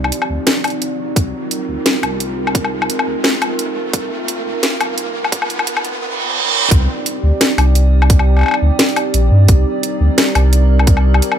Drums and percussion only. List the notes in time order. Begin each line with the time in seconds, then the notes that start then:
0.04 low woodblock
0.12 closed hi-hat
0.22 low woodblock
0.47 snare, closed hi-hat
0.64 closed hi-hat, low woodblock
0.68 closed hi-hat
0.70 closed hi-hat
0.82 closed hi-hat
1.16 kick, closed hi-hat
1.51 closed hi-hat
1.86 snare, closed hi-hat
2.03 closed hi-hat, low woodblock
2.20 closed hi-hat
2.47 low woodblock
2.55 kick, closed hi-hat
2.65 low woodblock
2.82 low woodblock
2.90 closed hi-hat
2.99 low woodblock
3.24 snare
3.42 closed hi-hat, low woodblock
3.59 closed hi-hat
3.93 kick, closed hi-hat
4.28 closed hi-hat
4.63 snare, closed hi-hat
4.81 closed hi-hat, low woodblock
4.98 closed hi-hat
5.24 low woodblock
5.32 kick, closed hi-hat
5.42 low woodblock
5.50 closed hi-hat
5.59 low woodblock
5.67 closed hi-hat
5.77 low woodblock
5.85 closed hi-hat
6.71 kick, closed hi-hat
7.06 closed hi-hat
7.41 snare, closed hi-hat
7.58 open hi-hat, low woodblock
7.75 closed hi-hat
8.02 low woodblock
8.10 kick, closed hi-hat
8.19 low woodblock
8.37 low woodblock
8.39 low woodblock
8.41 low woodblock
8.43 low woodblock
8.46 low woodblock
8.48 low woodblock
8.51 low woodblock
8.54 low woodblock
8.79 snare, closed hi-hat
8.89 open hi-hat
8.96 open hi-hat, low woodblock
9.14 closed hi-hat
9.48 kick, closed hi-hat
9.83 closed hi-hat
10.18 snare, closed hi-hat
10.35 open hi-hat, low woodblock
10.53 closed hi-hat
10.79 low woodblock
10.87 kick, closed hi-hat
10.97 low woodblock
11.14 low woodblock
11.22 closed hi-hat
11.32 low woodblock